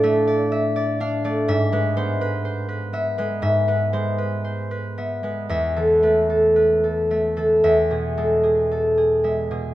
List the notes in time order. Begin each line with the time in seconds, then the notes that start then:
Already playing: A2 D4 D5 F5
0.03 A3 E5
0.27 D5
0.52 E5
0.76 D5
1.00 D4 F5
1.24 A3 D5
1.48 G#2 E5
1.72 G#3 B4
1.97 B3 C5
2.21 B4
2.45 C5
2.69 B4
2.93 B3 E5
3.18 G#3 B4
3.42 G#2 E5
3.68 B3 B4
3.93 G#3 C5
4.18 B4
4.44 C5
4.71 B4
4.98 B3 E5
5.23 G#3 B4
5.49 E2 E5
5.76 E3 A4
6.03 A3 B4
6.30 A4
6.56 B4
6.84 A4
7.11 A3 E5
7.37 E3 A4
7.64 E2 E5
7.90 B2 G#4
8.17 G#3 A4
8.43 G#4
8.71 A4
8.98 G#4
9.24 G#3 E5
9.51 B2 G#4